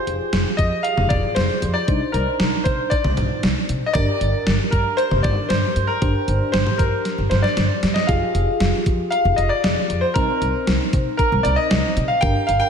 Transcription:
Already playing: F4 G4 G#4 C5
0.07 F1, closed hi-hat
0.33 F1, snare, closed hi-hat
0.57 F2 D#5, kick, closed hi-hat
0.83 F5, closed hi-hat
0.97 F1, mid tom
1.09 F1 D5, kick, closed hi-hat, mid tom
1.35 F1 C5, snare, closed hi-hat
1.62 F2, closed hi-hat
1.74 D5
1.88 C2 D4 D#4 C5, kick, closed hi-hat
2.12 C2 A#4, closed hi-hat
2.40 C2, snare, closed hi-hat
2.64 C3 C5, kick, closed hi-hat
2.90 D5, kick, closed hi-hat
3.04 C2, mid tom
3.17 C2, closed hi-hat, mid tom
3.43 C2, snare, closed hi-hat
3.69 C3, closed hi-hat
3.86 D#5
3.93 G1 D4 G4 A#4 D5, kick, closed hi-hat
4.21 G1, closed hi-hat
4.47 G1, snare, closed hi-hat
4.71 G2 A#4, kick, closed hi-hat
4.97 C5, closed hi-hat
5.11 G1, mid tom
5.23 G1 D5, kick, closed hi-hat, mid tom
5.49 G1 C5, snare, closed hi-hat
5.76 G2, closed hi-hat
5.87 A#4
6.02 G1 D4 G4 C5, kick, closed hi-hat
6.28 G1, closed hi-hat
6.52 G1 C5, snare, closed hi-hat
6.67 mid tom
6.78 G2 A#4, kick, closed hi-hat
7.05 snare, closed hi-hat
7.18 G1
7.30 G1 C5, snare, closed hi-hat
7.42 D5, snare
7.57 G1, snare, closed hi-hat
7.83 G2, snare, closed hi-hat
7.94 D#5, snare
8.07 F1 F4 G4 G#4 F5, kick, closed hi-hat
8.35 F1, closed hi-hat
8.60 F1, snare, closed hi-hat
8.86 F2, kick, closed hi-hat
9.10 F5, closed hi-hat
9.25 F1
9.36 F1 D#5, closed hi-hat
9.49 D5
9.64 F1, snare, closed hi-hat
9.90 F2, closed hi-hat
10.01 C5
10.14 C2 C4 D#4 A#4 C5, kick, closed hi-hat
10.41 C2, closed hi-hat
10.67 C2, snare, closed hi-hat
10.93 C3, kick, closed hi-hat
11.17 A#4, kick, closed hi-hat
11.32 C2
11.43 C2 D5, closed hi-hat
11.56 D#5
11.71 C2, snare, closed hi-hat
11.97 C3, closed hi-hat
12.08 F5
12.21 G1 D4 G4 A#4 G5, kick, closed hi-hat
12.47 G1 F5, closed hi-hat
12.60 G5

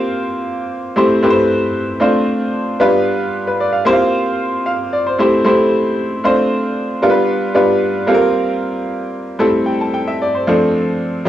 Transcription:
Already playing: A#3 C4 F4 G4 C5
0.96 A3 C4 E4 G4 C5
1.22 A3 C4 E4 G4 B4
1.30 C5
2.00 A3 C4 D4 F4 C5
2.80 G3 B3 D4 F4 B4
3.48 B4
3.61 D5
3.73 F5
3.85 A#3 C4 E4 G4 C5
3.93 F4
4.66 F5
4.93 D5
5.07 C5
5.18 A3 C4 E4 G4 C5
5.45 A3 C4 E4 G4 C5
6.24 A3 C4 D4 F4 C5
7.02 G3 B3 D4 F4 A#4
7.10 B4
7.54 G3 B3 D4 F4 B4
8.07 G3 A#3 C4 F4 A4
8.14 A#4
9.39 G3 A3 C4 E4 A4
9.66 G5
9.81 A5
9.94 G5
10.07 E5
10.22 D5
10.35 C5
10.47 F3 A3 C4 D4 A4
11.25 F3 G3

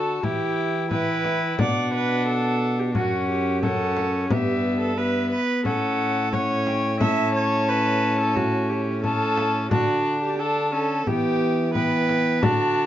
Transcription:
Already playing: D3 F#4 A4 A5
0.23 E3 E4 G4 G5, frame drum
0.91 E4 B4 G5, frame drum
1.25 frame drum
1.59 B2 D4 D5 F#5, frame drum
1.94 B4
2.27 A4
2.79 G4
2.94 F#2 C#4 F#4 F#5, frame drum
3.29 G4
3.62 C#4 A4 F#5, frame drum
3.97 frame drum
4.30 G2 B3 G4 E5, frame drum
4.80 A4
4.97 B3 B4 E5
5.31 B4
5.65 A2 C#4 A4 F#5, frame drum
6.33 C#4 C#5 F#5, frame drum
6.67 G5, frame drum
7.00 C#4 E5 A5, frame drum
7.35 C#5
7.68 B4
8.19 A4
8.36 F#4, frame drum
8.69 G4
9.04 C#4 A4 A5, frame drum
9.37 frame drum
9.71 D3 D4 F#4 A5, frame drum
10.22 G4
10.39 D4 A4 A5
10.72 C#4 A4
11.07 E3 B3 G4 G5, frame drum
11.74 B3 B4 G5, frame drum
12.09 frame drum
12.42 D3 D4 F#4 A5, frame drum

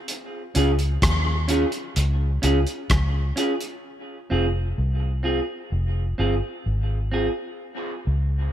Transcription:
0.08 closed hi-hat
0.55 C#2 C#4 F4 G#4, closed hi-hat
0.79 closed hi-hat
1.02 D#2, kick, cross-stick, closed hi-hat
1.25 muted clean electric guitar stroke
1.48 C#4 F4 G#4, closed hi-hat
1.72 closed hi-hat
1.96 C#2, closed hi-hat
2.42 C#2 C#4 F4 G#4, closed hi-hat
2.67 closed hi-hat
2.90 C#2, kick, cross-stick, closed hi-hat
3.36 C#4 F4 G#4, closed hi-hat
3.61 closed hi-hat
4.30 F1 C4 F4 G#4
4.78 C2
5.00 muted clean electric guitar stroke
5.23 C4 F4 G#4
5.72 F1
6.18 G1 C4 F4 G#4
6.66 G#1
7.12 C4 F4 G#4
8.07 C#2

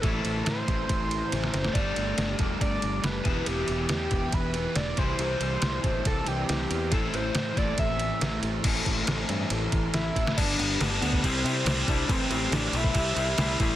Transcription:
Already playing: E4
0.01 A1 A2 E3 A3 C4 E4 A4 C5 A5, kick, ride
0.05 C4 E4
0.25 A1, ride
0.44 A2 C5, snare, ride
0.67 A1 A2 E3 A3 C4 E4, kick, ride
0.88 A1 C5, kick, ride
1.11 ride
1.31 A1 A2 E3 A3 C4 E4, snare, ride
1.44 snare
1.53 F#1 C5, snare, ride
1.65 snare
1.73 G1 G3 A3 D4 G4 D5, kick, ride
1.77 G4
1.96 G1, ride
2.18 G1, snare, ride
2.38 E1 G3 A3 D4 G4, kick, ride
2.61 G1 D5, kick, ride
2.82 G1, ride
3.02 F#1 G3 A3 D4 G4 B4, snare, ride
3.23 E1 E3 B3 E4 G4 E5 B5, kick, ride
3.27 G4
3.37 snare
3.46 E1 G4, ride
3.68 E1, ride
3.89 E2 E3 B3 E4 G4, snare, ride
4.11 E1, kick, ride
4.32 E1 B4, kick, ride
4.54 E3 B3 E4 G4, ride
4.76 E1 D5, snare, ride
4.96 C2 C3 E3 G3 C4 E4 C5 D5 C6, kick, ride
5.19 C2, ride
5.40 C2, ride
5.62 C2 C3 E3 G3 C4 E4, snare, ride
5.84 A1, kick, ride
6.05 C2 A4, kick, ride
6.26 C2 C3 E3 G3 C4 E4 G4, ride
6.49 C2 G4, snare, ride
6.71 E2, ride
6.90 A1 A2 E3 A3 C4 E4 A4 E5, kick, ride
7.13 A1 C5, ride
7.35 A2, snare, ride
7.56 A1 A2 E3 A3 C4 E4 D5, kick, ride
7.78 A1 E5, kick, ride
7.99 ride
8.20 A1 A2 E3 A3 C4 E4, snare, ride
8.43 A1, ride
8.64 A1 A2 E3 A3 C4 E4 A4 E5 C6, kick, crash, ride
8.86 A1, kick, ride
9.07 A1, snare, ride
9.29 G2, ride
9.50 A1, ride
9.72 A1, kick, ride
9.94 A1 E4, snare, ride
10.14 A1 A2 E3 A3 C4 E4, kick, ride
10.27 snare
10.36 G1 G2 D3 G3 B3 D4 G4 D5 B5, kick, crash
10.59 G1 G2 D3 G3 B3 D4, crash
10.80 G1 G2 D3 G3 B3 D4, snare, crash
11.01 D2 G2 D3 G3 B3 D4, crash
11.13 kick
11.20 C2 C3 C4 E4 C5 A5, kick, crash
11.25 G3 C4 E4
11.44 C3 G3 C4 E4, crash
11.65 C2 C3 G3 C4 E4, snare, crash
11.88 C2 C3 G3 C4 D4 E4, kick, crash
12.07 A1 A2 E3 A3 C4 E4 G4, kick, crash
12.29 A1 A2 E3 A3 C4 E4, crash
12.50 A1 A2 E3 A3 C4 D4 E4, snare, crash
12.72 B1 A2 E3 A3 C4 E4, crash
12.76 E4
12.84 kick
12.92 C2 C3 G3 C4 E4 C5 A5, kick, crash
13.15 C2 C3 G3 C4 E4, crash
13.36 C2 C3 G3 C4 E4, snare, crash
13.58 A1 C3 G3 C4 E4, kick, crash

